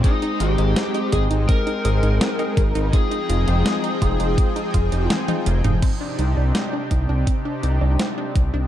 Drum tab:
CC |----------------|----------------|x---------------|
HH |xxxxxxxxxxxxxxxx|xxxxxxxxxxxxxxxx|x-x-x-x-x-x-x-x-|
SD |----o-------o---|----o-------o---|----o-------o---|
T1 |----------------|------------oo--|----------------|
T2 |----------------|---------------o|----------------|
BD |o-----o-o-----o-|o-----o-o-o-----|o-----o-o-----o-|